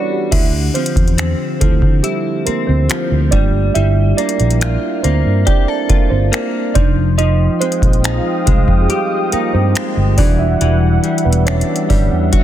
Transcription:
Already playing: E3 G3 B3 C#4 D4 E4 F#4 A4 B4 C#5 D5
0.11 D4 G4
0.31 D2 D3 E4 E5, kick, closed hi-hat, crash
0.74 F3 C4 C5, closed hi-hat
0.86 closed hi-hat
0.96 E2, kick, closed hi-hat
1.08 closed hi-hat
1.18 C4, finger snap, closed hi-hat
1.60 D2 F3 A3 C4 E4 A4, kick, closed hi-hat
1.82 D3, kick
2.03 G3 E4 G4, closed hi-hat
2.46 A#3 C4 A#4, muted fingered electric bass stroke, closed hi-hat
2.67 D2 C4 C5
2.90 F3, finger snap, closed hi-hat
3.12 D2
3.31 G3 A3 A#3 D4 F4 D5, kick, closed hi-hat
3.74 G1 G3 E4 E5, closed hi-hat
4.17 A#3 D4 D5, closed hi-hat
4.29 closed hi-hat
4.40 A#1, closed hi-hat
4.51 closed hi-hat
4.61 F4, finger snap, closed hi-hat
5.03 D2 A#3 C4 C5, closed hi-hat
5.26 G2
5.46 D4 G4 D5, kick, closed hi-hat
5.68 A4
5.89 A#3 F4 A#4, muted fingered electric bass stroke, kick, closed hi-hat
6.10 G1 C4 C5
6.32 A#3, finger snap, closed hi-hat
6.74 F1 F3 G#3 D4 D#4 D5, kick, closed hi-hat
7.18 F3 D#4 F4 D#5 F5 G5 D#6, closed hi-hat
7.60 G#3 C4 C5, closed hi-hat
7.72 closed hi-hat
7.82 A#1, kick, closed hi-hat
7.93 closed hi-hat
8.04 D#4, finger snap, closed hi-hat
8.46 C2 G#3 G#4, kick, closed hi-hat
8.68 F2, kick
8.82 G#4
8.89 G3 G4, closed hi-hat
9.32 A#3 D#4 A#4, muted fingered electric bass stroke, closed hi-hat
9.54 G2 C4 C5
9.75 G#3, finger snap, closed hi-hat
9.97 G1
10.17 E1 E3 G3 D4 F#4 D5 E5 F#5, kick, open hi-hat
10.39 E4 E5
10.61 E1 E3, closed hi-hat
11.04 G3, closed hi-hat
11.18 closed hi-hat
11.25 E1 B3 B4
11.33 closed hi-hat
11.46 C#4 D4 C#5, finger snap, closed hi-hat
11.61 closed hi-hat
11.76 closed hi-hat
11.89 G1 G3 D4 D5 F#5, kick, open hi-hat
12.11 E2
12.32 G3 D4 F#4, kick, closed hi-hat, reverse cymbal

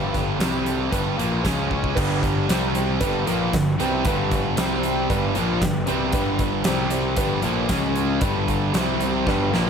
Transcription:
Already playing: G1 G2 D3 G3
0.13 D4 G4 B4, kick, snare, closed hi-hat
0.38 C2 C3 G3 C4 G4 C5, snare, closed hi-hat, tambourine
0.65 C4 G4 A4, closed hi-hat
0.91 G1 G2 D3 G3 D4 G4 B4, kick, closed hi-hat
1.16 A#1 A#2 F3 A#3 D4 G4 B4, closed hi-hat
1.44 C#2 C#3 G#3 C#4 G#4 C#5, kick, snare, closed hi-hat, tambourine
1.70 C#4 G#4 C#5, kick
1.84 kick
1.95 G1 G2 D3 G3 B3 D4 G4 B4, kick, crash
2.22 B3 D4 G4 D5, kick, closed hi-hat
2.48 C2 C3 G3 C4 G4 C5, snare, closed hi-hat, tambourine
2.75 G3 C4 G4 C5, closed hi-hat
3.00 G1 G2 D3 G3 B3 D4 G4 B4, kick, closed hi-hat
3.26 A#1 A#2 F3 A#3 B3 D4 G4 B4, closed hi-hat
3.53 G1 G2 D3 B3 D4 G4 B4, kick, snare, closed hi-hat, tambourine
3.79 C2 C3 G3 B3 C4 D4 G4 B4, closed hi-hat
4.05 G1 G2 D3 G3 B3 D4 G4 B4, kick, closed hi-hat
4.31 B3 D4 G4 B4, kick, snare, closed hi-hat
4.56 C2 C3 G3 C4 G4 C5, snare, closed hi-hat, tambourine
4.83 G3 C4 G4 C5, closed hi-hat
5.09 G1 G2 D3 G3 B3 D4 G4 B4, kick, closed hi-hat
5.34 A#1 A#2 F3 A#3 B3 D4 G4 B4, closed hi-hat
5.60 G1 G2 D3 B3 D4 G4 B4, kick, snare, closed hi-hat, tambourine
5.86 C2 C3 G3 B3 C4 D4 G4 B4, closed hi-hat
6.13 G1 G2 D3 G3 B3 D4 G4 B4, kick, closed hi-hat
6.39 B3 D4 G4 B4, kick, closed hi-hat
6.64 C2 C3 G3 C4 G4 C5, snare, closed hi-hat, tambourine
6.91 G3 C4 G4 C5, closed hi-hat
7.16 G1 G2 D3 G3 B3 D4 G4 B4, kick, closed hi-hat
7.42 A#1 A#2 F3 A#3 B3 D4 G4 A4, closed hi-hat
7.69 C#2 C#3 G#3 C#4 G#4 C#5, kick, snare, closed hi-hat, tambourine
7.94 G#3 C#4 G#4 C#5, closed hi-hat
8.21 G1 G2 D3 G3 B3 D4 G4 B4, kick, closed hi-hat
8.48 B3 D4 G4 A4, kick, snare, closed hi-hat
8.74 C2 C3 G3 C4 G4 C5, snare, closed hi-hat, tambourine
9.00 G3 C4 G4 C5, closed hi-hat
9.26 G1 G2 D3 G3 B3 D4 G4 B4, kick, snare
9.52 A#1 A#2 F3 A#3 B3 D4 G4 B4, snare

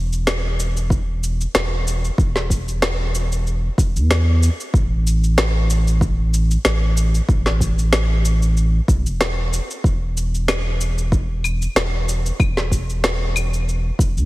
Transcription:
Already playing: E1
0.13 cabasa
0.27 snare, cabasa
0.60 cabasa
0.77 cabasa
0.90 kick, cabasa
1.24 cabasa
1.41 cabasa
1.54 E1, snare, cabasa
1.87 cabasa
2.04 cabasa
2.18 E1, kick, cabasa
2.36 snare
2.50 kick, cabasa
2.68 cabasa
2.82 snare, cabasa
3.15 cabasa
3.32 cabasa
3.47 cabasa
3.78 E1, kick, cabasa
3.95 E2, cabasa
4.11 snare, cabasa
4.43 cabasa
4.60 cabasa
4.74 A1, kick, cabasa
5.07 cabasa
5.24 cabasa
5.38 snare, cabasa
5.70 cabasa
5.87 cabasa
6.01 kick, cabasa
6.34 cabasa
6.51 cabasa
6.65 A1, snare, cabasa
6.97 cabasa
7.15 cabasa
7.29 A1, kick, cabasa
7.46 snare
7.61 kick, cabasa
7.79 cabasa
7.93 snare, cabasa
8.25 cabasa
8.42 cabasa
8.57 cabasa
8.88 B1, kick, cabasa
9.05 E1, cabasa
9.21 snare, cabasa
9.53 cabasa
9.71 cabasa
9.84 E1, kick, cabasa
10.17 cabasa
10.35 cabasa
10.48 snare, cabasa, claves
10.81 cabasa
10.98 cabasa
11.12 kick, cabasa
11.44 cabasa, claves
11.62 cabasa
11.75 E1, snare, cabasa
12.09 cabasa
12.26 cabasa
12.40 E1, kick, cabasa, claves
12.57 snare
12.71 kick, cabasa
12.90 cabasa
13.04 snare, cabasa
13.36 cabasa, claves
13.54 cabasa
13.69 cabasa
13.99 E1, kick, cabasa
14.16 E2, cabasa

